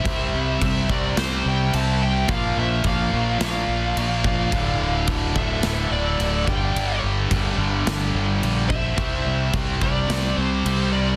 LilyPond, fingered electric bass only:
\new Staff \with { instrumentName = "Fingered electric bass" } { \clef bass \time 4/4 \key c \mixolydian \tempo 4 = 108 c,8 c,8 c,8 c,8 c,8 c,8 c,4 | bes,,8 bes,,8 bes,,8 bes,,8 bes,,8 bes,,8 bes,,4 | d,,8 d,,8 r8 d,,8 d,,8 d,,8 d,,8 g,,8 | g,,8 g,,8 g,,8 g,,8 g,,8 g,,8 bes,,4 |
c,8 c,8 c,8 c,8 c,8 c,8 c,4 | }